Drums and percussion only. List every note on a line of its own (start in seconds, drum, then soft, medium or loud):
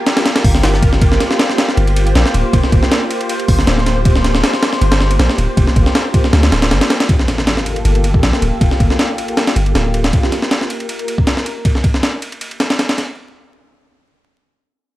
0.06 snare loud
0.06 ride medium
0.17 snare loud
0.17 ride medium
0.26 snare loud
0.26 ride medium
0.36 snare loud
0.36 ride medium
0.44 kick loud
0.44 open hi-hat medium
0.55 snare medium
0.64 snare loud
0.64 ride medium
0.74 snare soft
0.83 kick loud
0.83 ride medium
0.93 snare soft
1.02 kick loud
1.02 ride medium
1.12 snare medium
1.20 snare soft
1.20 ride medium
1.31 snare medium
1.39 snare loud
1.39 ride medium
1.49 snare medium
1.58 snare loud
1.58 ride medium
1.69 snare soft
1.77 ride medium
1.87 ride soft
1.96 ride medium
2.07 ride soft
2.15 snare loud
2.15 ride medium
2.26 snare medium
2.34 ride medium
2.53 kick loud
2.53 ride medium
2.64 snare soft
2.72 kick loud
2.72 ride medium
2.83 snare medium
2.92 snare loud
2.92 ride medium
3.11 ride medium
3.21 ride soft
3.29 ride medium
3.40 ride soft
3.48 kick loud
3.48 open hi-hat medium
3.59 snare medium
3.67 snare loud
3.67 ride medium
3.78 snare soft
3.86 snare soft
3.86 ride medium
4.05 kick loud
4.05 ride medium
4.16 snare medium
4.24 snare medium
4.24 ride medium
4.35 snare medium
4.44 snare loud
4.44 ride medium
4.54 snare medium
4.63 snare loud
4.63 ride medium
4.73 snare medium
4.81 ride medium
4.92 snare loud
4.92 ride medium
5.00 snare medium
5.11 ride medium
5.19 snare loud
5.19 ride medium
5.30 snare medium
5.38 ride medium
5.57 kick loud
5.57 ride medium
5.67 snare soft
5.76 kick medium
5.76 ride medium
5.86 snare medium
5.95 snare loud
5.95 ride medium
6.14 kick loud
6.14 ride medium
6.24 snare soft
6.33 snare loud
6.33 ride medium
6.43 snare loud
6.43 ride medium
6.52 snare loud
6.52 ride medium
6.62 snare loud
6.62 ride medium
6.71 snare loud
6.71 ride medium
6.81 snare loud
6.81 ride medium
6.90 snare loud
6.90 ride medium
7.00 snare loud
7.00 ride medium
7.09 kick loud
7.09 ride medium
7.19 snare soft
7.28 snare soft
7.28 ride medium
7.38 snare medium
7.47 snare loud
7.47 ride medium
7.57 snare soft
7.66 ride medium
7.76 ride soft
7.85 ride medium
7.95 ride soft
8.04 ride medium
8.14 kick medium
8.23 snare loud
8.23 ride medium
8.33 snare medium
8.42 ride medium
8.61 kick loud
8.61 ride medium
8.71 snare soft
8.80 kick medium
8.80 ride medium
8.90 snare soft
8.99 snare loud
8.99 ride medium
9.18 ride medium
9.28 ride soft
9.37 snare loud
9.37 ride medium
9.47 snare loud
9.47 ride medium
9.56 ride medium
9.66 ride soft
9.75 snare loud
9.75 ride medium
9.94 ride medium
10.04 snare loud
10.04 ride medium
10.13 kick loud
10.13 ride medium
10.23 snare soft
10.32 snare soft
10.32 ride medium
10.42 snare medium
10.51 snare loud
10.51 ride medium
10.61 snare soft
10.70 ride medium
10.80 ride soft
10.89 ride medium
10.99 ride soft
11.08 ride medium
11.18 kick medium
11.27 snare loud
11.27 ride medium
11.37 snare medium
11.46 ride medium
11.65 kick loud
11.65 ride medium
11.75 snare soft
11.84 kick medium
11.84 ride medium
11.94 snare soft
12.03 snare loud
12.03 ride medium
12.22 ride medium
12.32 ride soft
12.41 ride medium
12.51 ride soft
12.60 snare loud
12.60 ride medium
12.70 snare medium
12.70 ride medium
12.79 snare medium
12.79 ride medium
12.89 snare medium
12.89 ride medium
12.98 snare soft
12.98 ride medium